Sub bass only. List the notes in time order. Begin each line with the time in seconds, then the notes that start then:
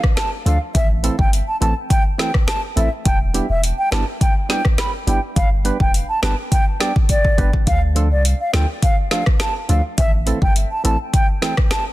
0.46 D2
0.75 A1
1.19 G1
1.61 A1
2.77 A1
3.06 E1
3.49 E1
3.92 G1
5.07 G1
5.36 G1
5.80 F1
6.23 G1
7.38 G1
7.67 D2
8.11 C2
8.54 D2
9.69 D2
9.98 A1
10.42 G1
10.85 A1